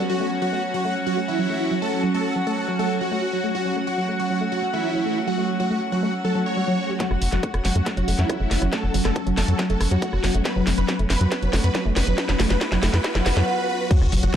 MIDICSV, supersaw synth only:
0, 0, Header, 1, 2, 480
1, 0, Start_track
1, 0, Key_signature, 3, "minor"
1, 0, Tempo, 431655
1, 105, Time_signature, 4, 2, 24, 8
1, 15971, End_track
2, 0, Start_track
2, 0, Title_t, "Supersaw synth"
2, 0, Program_c, 0, 81
2, 104, Note_on_c, 0, 66, 104
2, 330, Note_off_c, 0, 66, 0
2, 464, Note_on_c, 0, 66, 94
2, 690, Note_off_c, 0, 66, 0
2, 824, Note_on_c, 0, 66, 92
2, 1050, Note_off_c, 0, 66, 0
2, 1184, Note_on_c, 0, 66, 87
2, 1334, Note_off_c, 0, 66, 0
2, 1424, Note_on_c, 0, 64, 100
2, 1928, Note_off_c, 0, 64, 0
2, 2024, Note_on_c, 0, 69, 100
2, 2249, Note_off_c, 0, 69, 0
2, 2384, Note_on_c, 0, 69, 95
2, 2609, Note_off_c, 0, 69, 0
2, 2744, Note_on_c, 0, 69, 94
2, 2969, Note_off_c, 0, 69, 0
2, 3104, Note_on_c, 0, 69, 87
2, 3254, Note_off_c, 0, 69, 0
2, 3344, Note_on_c, 0, 66, 101
2, 3848, Note_off_c, 0, 66, 0
2, 3944, Note_on_c, 0, 66, 104
2, 4170, Note_off_c, 0, 66, 0
2, 4304, Note_on_c, 0, 66, 92
2, 4529, Note_off_c, 0, 66, 0
2, 4664, Note_on_c, 0, 66, 94
2, 4890, Note_off_c, 0, 66, 0
2, 5024, Note_on_c, 0, 66, 89
2, 5174, Note_off_c, 0, 66, 0
2, 5264, Note_on_c, 0, 64, 96
2, 5768, Note_off_c, 0, 64, 0
2, 5864, Note_on_c, 0, 66, 102
2, 6090, Note_off_c, 0, 66, 0
2, 6224, Note_on_c, 0, 66, 96
2, 6450, Note_off_c, 0, 66, 0
2, 6584, Note_on_c, 0, 66, 95
2, 6810, Note_off_c, 0, 66, 0
2, 6944, Note_on_c, 0, 69, 88
2, 7095, Note_off_c, 0, 69, 0
2, 7184, Note_on_c, 0, 73, 100
2, 7688, Note_off_c, 0, 73, 0
2, 7784, Note_on_c, 0, 66, 101
2, 8010, Note_off_c, 0, 66, 0
2, 8144, Note_on_c, 0, 66, 95
2, 8369, Note_off_c, 0, 66, 0
2, 8504, Note_on_c, 0, 66, 95
2, 8730, Note_off_c, 0, 66, 0
2, 8864, Note_on_c, 0, 66, 86
2, 9014, Note_off_c, 0, 66, 0
2, 9104, Note_on_c, 0, 64, 100
2, 9608, Note_off_c, 0, 64, 0
2, 9704, Note_on_c, 0, 69, 101
2, 9930, Note_off_c, 0, 69, 0
2, 10064, Note_on_c, 0, 69, 94
2, 10290, Note_off_c, 0, 69, 0
2, 10424, Note_on_c, 0, 69, 95
2, 10650, Note_off_c, 0, 69, 0
2, 10784, Note_on_c, 0, 69, 88
2, 10934, Note_off_c, 0, 69, 0
2, 11024, Note_on_c, 0, 66, 97
2, 11528, Note_off_c, 0, 66, 0
2, 11624, Note_on_c, 0, 71, 94
2, 11849, Note_off_c, 0, 71, 0
2, 11984, Note_on_c, 0, 71, 91
2, 12210, Note_off_c, 0, 71, 0
2, 12344, Note_on_c, 0, 71, 87
2, 12565, Note_off_c, 0, 71, 0
2, 12584, Note_on_c, 0, 71, 95
2, 12809, Note_off_c, 0, 71, 0
2, 12944, Note_on_c, 0, 71, 93
2, 13169, Note_off_c, 0, 71, 0
2, 13304, Note_on_c, 0, 71, 95
2, 13525, Note_off_c, 0, 71, 0
2, 13544, Note_on_c, 0, 71, 99
2, 13769, Note_off_c, 0, 71, 0
2, 13904, Note_on_c, 0, 71, 93
2, 14005, Note_off_c, 0, 71, 0
2, 14024, Note_on_c, 0, 71, 106
2, 14249, Note_off_c, 0, 71, 0
2, 14384, Note_on_c, 0, 71, 92
2, 14485, Note_off_c, 0, 71, 0
2, 14504, Note_on_c, 0, 71, 109
2, 14725, Note_off_c, 0, 71, 0
2, 14745, Note_on_c, 0, 71, 108
2, 14965, Note_off_c, 0, 71, 0
2, 14985, Note_on_c, 0, 71, 103
2, 15205, Note_off_c, 0, 71, 0
2, 15225, Note_on_c, 0, 71, 106
2, 15445, Note_off_c, 0, 71, 0
2, 15465, Note_on_c, 0, 66, 101
2, 15690, Note_off_c, 0, 66, 0
2, 15825, Note_on_c, 0, 66, 96
2, 15971, Note_off_c, 0, 66, 0
2, 15971, End_track
0, 0, End_of_file